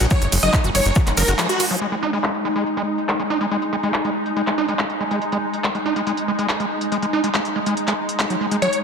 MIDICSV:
0, 0, Header, 1, 6, 480
1, 0, Start_track
1, 0, Tempo, 425532
1, 124, Time_signature, 4, 2, 24, 8
1, 9967, End_track
2, 0, Start_track
2, 0, Title_t, "Supersaw synth"
2, 0, Program_c, 0, 81
2, 124, Note_on_c, 0, 73, 100
2, 298, Note_off_c, 0, 73, 0
2, 484, Note_on_c, 0, 75, 96
2, 658, Note_off_c, 0, 75, 0
2, 844, Note_on_c, 0, 73, 104
2, 1075, Note_off_c, 0, 73, 0
2, 1324, Note_on_c, 0, 70, 94
2, 1498, Note_off_c, 0, 70, 0
2, 1685, Note_on_c, 0, 66, 98
2, 1858, Note_off_c, 0, 66, 0
2, 9724, Note_on_c, 0, 73, 102
2, 9898, Note_off_c, 0, 73, 0
2, 9967, End_track
3, 0, Start_track
3, 0, Title_t, "Ambient pad"
3, 0, Program_c, 1, 92
3, 0, Note_on_c, 1, 56, 81
3, 0, Note_on_c, 1, 63, 87
3, 2031, Note_off_c, 1, 56, 0
3, 2031, Note_off_c, 1, 63, 0
3, 2044, Note_on_c, 1, 56, 80
3, 2044, Note_on_c, 1, 63, 79
3, 9967, Note_off_c, 1, 56, 0
3, 9967, Note_off_c, 1, 63, 0
3, 9967, End_track
4, 0, Start_track
4, 0, Title_t, "Acid bass"
4, 0, Program_c, 2, 38
4, 4, Note_on_c, 2, 66, 75
4, 65, Note_off_c, 2, 66, 0
4, 124, Note_on_c, 2, 54, 82
4, 185, Note_off_c, 2, 54, 0
4, 364, Note_on_c, 2, 54, 76
4, 401, Note_off_c, 2, 54, 0
4, 484, Note_on_c, 2, 54, 77
4, 576, Note_off_c, 2, 54, 0
4, 724, Note_on_c, 2, 66, 81
4, 785, Note_off_c, 2, 66, 0
4, 1084, Note_on_c, 2, 54, 84
4, 1145, Note_off_c, 2, 54, 0
4, 1204, Note_on_c, 2, 54, 77
4, 1241, Note_off_c, 2, 54, 0
4, 1324, Note_on_c, 2, 54, 100
4, 1385, Note_off_c, 2, 54, 0
4, 1444, Note_on_c, 2, 66, 78
4, 1505, Note_off_c, 2, 66, 0
4, 1564, Note_on_c, 2, 53, 82
4, 1656, Note_off_c, 2, 53, 0
4, 1804, Note_on_c, 2, 66, 78
4, 1865, Note_off_c, 2, 66, 0
4, 1924, Note_on_c, 2, 54, 104
4, 1985, Note_off_c, 2, 54, 0
4, 2044, Note_on_c, 2, 56, 80
4, 2105, Note_off_c, 2, 56, 0
4, 2164, Note_on_c, 2, 56, 74
4, 2201, Note_off_c, 2, 56, 0
4, 2284, Note_on_c, 2, 63, 96
4, 2376, Note_off_c, 2, 63, 0
4, 2404, Note_on_c, 2, 56, 73
4, 2465, Note_off_c, 2, 56, 0
4, 2524, Note_on_c, 2, 56, 81
4, 2585, Note_off_c, 2, 56, 0
4, 2764, Note_on_c, 2, 56, 74
4, 2801, Note_off_c, 2, 56, 0
4, 2884, Note_on_c, 2, 56, 74
4, 2976, Note_off_c, 2, 56, 0
4, 3124, Note_on_c, 2, 56, 76
4, 3185, Note_off_c, 2, 56, 0
4, 3484, Note_on_c, 2, 56, 84
4, 3545, Note_off_c, 2, 56, 0
4, 3604, Note_on_c, 2, 56, 71
4, 3641, Note_off_c, 2, 56, 0
4, 3724, Note_on_c, 2, 63, 97
4, 3815, Note_off_c, 2, 63, 0
4, 3844, Note_on_c, 2, 56, 74
4, 3905, Note_off_c, 2, 56, 0
4, 3964, Note_on_c, 2, 56, 84
4, 4025, Note_off_c, 2, 56, 0
4, 4203, Note_on_c, 2, 56, 77
4, 4240, Note_off_c, 2, 56, 0
4, 4324, Note_on_c, 2, 56, 78
4, 4416, Note_off_c, 2, 56, 0
4, 4564, Note_on_c, 2, 56, 76
4, 4625, Note_off_c, 2, 56, 0
4, 4924, Note_on_c, 2, 56, 80
4, 4985, Note_off_c, 2, 56, 0
4, 5044, Note_on_c, 2, 56, 76
4, 5081, Note_off_c, 2, 56, 0
4, 5164, Note_on_c, 2, 63, 100
4, 5256, Note_off_c, 2, 63, 0
4, 5284, Note_on_c, 2, 56, 72
4, 5345, Note_off_c, 2, 56, 0
4, 5404, Note_on_c, 2, 56, 83
4, 5465, Note_off_c, 2, 56, 0
4, 5644, Note_on_c, 2, 56, 75
4, 5681, Note_off_c, 2, 56, 0
4, 5764, Note_on_c, 2, 56, 72
4, 5856, Note_off_c, 2, 56, 0
4, 6004, Note_on_c, 2, 56, 74
4, 6065, Note_off_c, 2, 56, 0
4, 6365, Note_on_c, 2, 56, 80
4, 6425, Note_off_c, 2, 56, 0
4, 6484, Note_on_c, 2, 56, 78
4, 6521, Note_off_c, 2, 56, 0
4, 6605, Note_on_c, 2, 63, 98
4, 6696, Note_off_c, 2, 63, 0
4, 6724, Note_on_c, 2, 56, 75
4, 6785, Note_off_c, 2, 56, 0
4, 6844, Note_on_c, 2, 56, 81
4, 6905, Note_off_c, 2, 56, 0
4, 7084, Note_on_c, 2, 56, 74
4, 7121, Note_off_c, 2, 56, 0
4, 7204, Note_on_c, 2, 56, 72
4, 7296, Note_off_c, 2, 56, 0
4, 7444, Note_on_c, 2, 56, 73
4, 7505, Note_off_c, 2, 56, 0
4, 7804, Note_on_c, 2, 56, 83
4, 7865, Note_off_c, 2, 56, 0
4, 7924, Note_on_c, 2, 56, 72
4, 7961, Note_off_c, 2, 56, 0
4, 8044, Note_on_c, 2, 63, 96
4, 8136, Note_off_c, 2, 63, 0
4, 8164, Note_on_c, 2, 56, 72
4, 8225, Note_off_c, 2, 56, 0
4, 8284, Note_on_c, 2, 56, 81
4, 8345, Note_off_c, 2, 56, 0
4, 8524, Note_on_c, 2, 56, 72
4, 8561, Note_off_c, 2, 56, 0
4, 8644, Note_on_c, 2, 56, 74
4, 8736, Note_off_c, 2, 56, 0
4, 8884, Note_on_c, 2, 56, 77
4, 8945, Note_off_c, 2, 56, 0
4, 9244, Note_on_c, 2, 56, 80
4, 9305, Note_off_c, 2, 56, 0
4, 9363, Note_on_c, 2, 54, 75
4, 9425, Note_off_c, 2, 54, 0
4, 9484, Note_on_c, 2, 56, 74
4, 9545, Note_off_c, 2, 56, 0
4, 9603, Note_on_c, 2, 56, 73
4, 9665, Note_off_c, 2, 56, 0
4, 9723, Note_on_c, 2, 54, 79
4, 9785, Note_off_c, 2, 54, 0
4, 9967, End_track
5, 0, Start_track
5, 0, Title_t, "Analog synth bass"
5, 0, Program_c, 3, 38
5, 4, Note_on_c, 3, 34, 96
5, 71, Note_off_c, 3, 34, 0
5, 244, Note_on_c, 3, 30, 86
5, 311, Note_off_c, 3, 30, 0
5, 364, Note_on_c, 3, 30, 108
5, 431, Note_off_c, 3, 30, 0
5, 484, Note_on_c, 3, 30, 92
5, 551, Note_off_c, 3, 30, 0
5, 724, Note_on_c, 3, 30, 90
5, 791, Note_off_c, 3, 30, 0
5, 844, Note_on_c, 3, 30, 95
5, 911, Note_off_c, 3, 30, 0
5, 964, Note_on_c, 3, 30, 95
5, 1031, Note_off_c, 3, 30, 0
5, 1204, Note_on_c, 3, 30, 91
5, 1271, Note_off_c, 3, 30, 0
5, 1324, Note_on_c, 3, 30, 107
5, 1391, Note_off_c, 3, 30, 0
5, 1444, Note_on_c, 3, 30, 98
5, 1511, Note_off_c, 3, 30, 0
5, 9967, End_track
6, 0, Start_track
6, 0, Title_t, "Drums"
6, 4, Note_on_c, 9, 42, 69
6, 12, Note_on_c, 9, 69, 37
6, 117, Note_off_c, 9, 42, 0
6, 117, Note_off_c, 9, 69, 0
6, 117, Note_on_c, 9, 69, 54
6, 123, Note_on_c, 9, 36, 120
6, 124, Note_on_c, 9, 42, 71
6, 230, Note_off_c, 9, 69, 0
6, 236, Note_off_c, 9, 36, 0
6, 237, Note_off_c, 9, 42, 0
6, 239, Note_on_c, 9, 69, 27
6, 244, Note_on_c, 9, 42, 72
6, 352, Note_off_c, 9, 69, 0
6, 357, Note_off_c, 9, 42, 0
6, 364, Note_on_c, 9, 46, 101
6, 364, Note_on_c, 9, 51, 85
6, 366, Note_on_c, 9, 69, 91
6, 477, Note_off_c, 9, 46, 0
6, 477, Note_off_c, 9, 51, 0
6, 479, Note_off_c, 9, 69, 0
6, 484, Note_on_c, 9, 42, 73
6, 488, Note_on_c, 9, 69, 37
6, 597, Note_off_c, 9, 42, 0
6, 601, Note_off_c, 9, 69, 0
6, 603, Note_on_c, 9, 36, 110
6, 604, Note_on_c, 9, 39, 127
6, 604, Note_on_c, 9, 42, 72
6, 604, Note_on_c, 9, 69, 53
6, 716, Note_off_c, 9, 36, 0
6, 717, Note_off_c, 9, 39, 0
6, 717, Note_off_c, 9, 42, 0
6, 717, Note_off_c, 9, 69, 0
6, 720, Note_on_c, 9, 69, 24
6, 724, Note_on_c, 9, 42, 73
6, 833, Note_off_c, 9, 69, 0
6, 837, Note_off_c, 9, 42, 0
6, 844, Note_on_c, 9, 46, 107
6, 844, Note_on_c, 9, 51, 87
6, 849, Note_on_c, 9, 69, 90
6, 957, Note_off_c, 9, 46, 0
6, 957, Note_off_c, 9, 51, 0
6, 961, Note_off_c, 9, 69, 0
6, 961, Note_on_c, 9, 69, 36
6, 964, Note_on_c, 9, 42, 69
6, 1071, Note_off_c, 9, 69, 0
6, 1071, Note_on_c, 9, 69, 50
6, 1077, Note_off_c, 9, 42, 0
6, 1084, Note_on_c, 9, 36, 120
6, 1084, Note_on_c, 9, 42, 72
6, 1183, Note_off_c, 9, 69, 0
6, 1196, Note_off_c, 9, 36, 0
6, 1197, Note_off_c, 9, 42, 0
6, 1203, Note_on_c, 9, 69, 27
6, 1204, Note_on_c, 9, 39, 39
6, 1204, Note_on_c, 9, 42, 75
6, 1316, Note_off_c, 9, 69, 0
6, 1317, Note_off_c, 9, 39, 0
6, 1317, Note_off_c, 9, 42, 0
6, 1321, Note_on_c, 9, 69, 88
6, 1324, Note_on_c, 9, 46, 104
6, 1324, Note_on_c, 9, 51, 85
6, 1434, Note_off_c, 9, 69, 0
6, 1437, Note_off_c, 9, 46, 0
6, 1437, Note_off_c, 9, 51, 0
6, 1444, Note_on_c, 9, 42, 71
6, 1450, Note_on_c, 9, 69, 38
6, 1557, Note_off_c, 9, 42, 0
6, 1563, Note_off_c, 9, 69, 0
6, 1564, Note_on_c, 9, 39, 127
6, 1564, Note_on_c, 9, 42, 68
6, 1567, Note_on_c, 9, 69, 46
6, 1677, Note_off_c, 9, 39, 0
6, 1677, Note_off_c, 9, 42, 0
6, 1678, Note_off_c, 9, 69, 0
6, 1678, Note_on_c, 9, 69, 24
6, 1684, Note_on_c, 9, 42, 68
6, 1791, Note_off_c, 9, 69, 0
6, 1797, Note_off_c, 9, 42, 0
6, 1802, Note_on_c, 9, 69, 85
6, 1804, Note_on_c, 9, 46, 103
6, 1804, Note_on_c, 9, 51, 83
6, 1915, Note_off_c, 9, 69, 0
6, 1917, Note_off_c, 9, 46, 0
6, 1917, Note_off_c, 9, 51, 0
6, 1924, Note_on_c, 9, 46, 61
6, 1924, Note_on_c, 9, 69, 42
6, 2036, Note_off_c, 9, 69, 0
6, 2037, Note_off_c, 9, 46, 0
6, 2164, Note_on_c, 9, 42, 64
6, 2277, Note_off_c, 9, 42, 0
6, 2404, Note_on_c, 9, 42, 67
6, 2517, Note_off_c, 9, 42, 0
6, 2524, Note_on_c, 9, 39, 116
6, 2524, Note_on_c, 9, 42, 66
6, 2637, Note_off_c, 9, 39, 0
6, 2637, Note_off_c, 9, 42, 0
6, 2645, Note_on_c, 9, 42, 65
6, 2757, Note_off_c, 9, 42, 0
6, 2884, Note_on_c, 9, 42, 64
6, 2997, Note_off_c, 9, 42, 0
6, 3004, Note_on_c, 9, 42, 64
6, 3117, Note_off_c, 9, 42, 0
6, 3124, Note_on_c, 9, 42, 67
6, 3237, Note_off_c, 9, 42, 0
6, 3364, Note_on_c, 9, 42, 64
6, 3477, Note_off_c, 9, 42, 0
6, 3484, Note_on_c, 9, 39, 121
6, 3484, Note_on_c, 9, 42, 66
6, 3597, Note_off_c, 9, 39, 0
6, 3597, Note_off_c, 9, 42, 0
6, 3604, Note_on_c, 9, 42, 65
6, 3717, Note_off_c, 9, 42, 0
6, 3844, Note_on_c, 9, 42, 69
6, 3957, Note_off_c, 9, 42, 0
6, 3964, Note_on_c, 9, 42, 63
6, 4077, Note_off_c, 9, 42, 0
6, 4084, Note_on_c, 9, 42, 63
6, 4197, Note_off_c, 9, 42, 0
6, 4324, Note_on_c, 9, 42, 65
6, 4437, Note_off_c, 9, 42, 0
6, 4444, Note_on_c, 9, 39, 125
6, 4444, Note_on_c, 9, 42, 65
6, 4557, Note_off_c, 9, 39, 0
6, 4557, Note_off_c, 9, 42, 0
6, 4564, Note_on_c, 9, 42, 63
6, 4677, Note_off_c, 9, 42, 0
6, 4804, Note_on_c, 9, 42, 64
6, 4917, Note_off_c, 9, 42, 0
6, 4924, Note_on_c, 9, 42, 65
6, 5037, Note_off_c, 9, 42, 0
6, 5044, Note_on_c, 9, 39, 38
6, 5044, Note_on_c, 9, 42, 68
6, 5157, Note_off_c, 9, 39, 0
6, 5157, Note_off_c, 9, 42, 0
6, 5284, Note_on_c, 9, 42, 65
6, 5397, Note_off_c, 9, 42, 0
6, 5404, Note_on_c, 9, 39, 122
6, 5404, Note_on_c, 9, 42, 65
6, 5517, Note_off_c, 9, 39, 0
6, 5517, Note_off_c, 9, 42, 0
6, 5524, Note_on_c, 9, 42, 64
6, 5637, Note_off_c, 9, 42, 0
6, 5764, Note_on_c, 9, 42, 64
6, 5877, Note_off_c, 9, 42, 0
6, 5884, Note_on_c, 9, 42, 61
6, 5997, Note_off_c, 9, 42, 0
6, 6004, Note_on_c, 9, 42, 62
6, 6117, Note_off_c, 9, 42, 0
6, 6244, Note_on_c, 9, 42, 63
6, 6357, Note_off_c, 9, 42, 0
6, 6364, Note_on_c, 9, 39, 118
6, 6364, Note_on_c, 9, 42, 61
6, 6477, Note_off_c, 9, 39, 0
6, 6477, Note_off_c, 9, 42, 0
6, 6484, Note_on_c, 9, 42, 59
6, 6597, Note_off_c, 9, 42, 0
6, 6724, Note_on_c, 9, 42, 60
6, 6837, Note_off_c, 9, 42, 0
6, 6844, Note_on_c, 9, 42, 62
6, 6957, Note_off_c, 9, 42, 0
6, 6964, Note_on_c, 9, 42, 62
6, 7077, Note_off_c, 9, 42, 0
6, 7204, Note_on_c, 9, 42, 60
6, 7317, Note_off_c, 9, 42, 0
6, 7324, Note_on_c, 9, 39, 123
6, 7324, Note_on_c, 9, 42, 62
6, 7437, Note_off_c, 9, 39, 0
6, 7437, Note_off_c, 9, 42, 0
6, 7444, Note_on_c, 9, 42, 64
6, 7557, Note_off_c, 9, 42, 0
6, 7684, Note_on_c, 9, 42, 64
6, 7797, Note_off_c, 9, 42, 0
6, 7804, Note_on_c, 9, 42, 60
6, 7917, Note_off_c, 9, 42, 0
6, 7924, Note_on_c, 9, 42, 59
6, 8037, Note_off_c, 9, 42, 0
6, 8164, Note_on_c, 9, 42, 65
6, 8277, Note_off_c, 9, 42, 0
6, 8284, Note_on_c, 9, 39, 118
6, 8284, Note_on_c, 9, 42, 60
6, 8397, Note_off_c, 9, 39, 0
6, 8397, Note_off_c, 9, 42, 0
6, 8404, Note_on_c, 9, 42, 60
6, 8517, Note_off_c, 9, 42, 0
6, 8644, Note_on_c, 9, 42, 60
6, 8757, Note_off_c, 9, 42, 0
6, 8764, Note_on_c, 9, 42, 62
6, 8877, Note_off_c, 9, 42, 0
6, 8884, Note_on_c, 9, 39, 36
6, 8884, Note_on_c, 9, 42, 60
6, 8997, Note_off_c, 9, 39, 0
6, 8997, Note_off_c, 9, 42, 0
6, 9124, Note_on_c, 9, 42, 62
6, 9237, Note_off_c, 9, 42, 0
6, 9244, Note_on_c, 9, 39, 115
6, 9244, Note_on_c, 9, 42, 63
6, 9357, Note_off_c, 9, 39, 0
6, 9357, Note_off_c, 9, 42, 0
6, 9364, Note_on_c, 9, 42, 62
6, 9477, Note_off_c, 9, 42, 0
6, 9604, Note_on_c, 9, 42, 61
6, 9717, Note_off_c, 9, 42, 0
6, 9724, Note_on_c, 9, 42, 60
6, 9837, Note_off_c, 9, 42, 0
6, 9844, Note_on_c, 9, 42, 60
6, 9957, Note_off_c, 9, 42, 0
6, 9967, End_track
0, 0, End_of_file